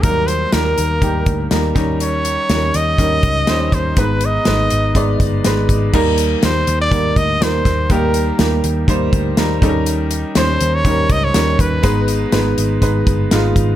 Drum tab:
CC |--------|--------|--------|x-------|
HH |xxxxxxxx|xxxxxxxx|xxxxxxxx|-xxxxxxx|
SD |--o---oo|--o---o-|--o---o-|--o---oo|
BD |o---oo-o|----oo-o|o---oo-o|o---oo-o|

CC |--------|--------|--------|
HH |xxxxxxxx|xxxxxxxx|xxxxxxxx|
SD |--o---o-|--o---o-|--o---o-|
BD |o---oo-o|----oo-o|o---oo-o|